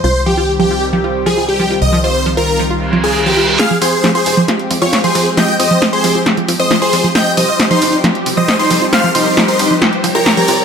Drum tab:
HH |----------------|----------------|xxoxxxoxxxoxxxox|xxoxxxoxxxo-xxox|
SD |----------------|----------------|o---o---o---o---|o---o---o---o---|

HH |xxoxxxoxxxoxxxox|xxoxxxo-xxoxxxox|
SD |o---o---o---o---|o---o---o---o---|